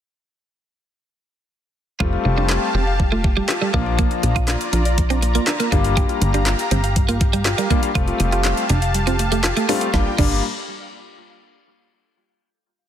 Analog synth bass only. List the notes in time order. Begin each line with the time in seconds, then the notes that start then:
2.00 F1
2.25 F1
2.75 F1
3.74 A#1
4.23 A#1
4.73 A#1
5.72 G1
6.22 G1
6.71 G1
7.95 F1
8.20 F1
8.70 F1
9.94 G1
10.19 G1